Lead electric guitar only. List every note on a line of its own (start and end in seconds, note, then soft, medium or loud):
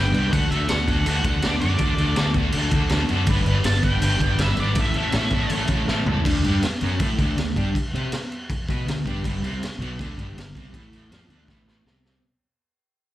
0.00 0.32 G5 medium
0.32 0.49 F#5 loud
0.51 0.68 E5 medium
0.68 1.05 F#5 loud
1.09 1.42 F#5 medium
1.47 1.60 D5 medium
1.61 2.31 D5 medium
3.66 3.84 A5 loud
3.84 4.41 G5 loud
4.41 4.60 E5 medium
4.60 4.81 D5 medium
4.81 5.53 E5 loud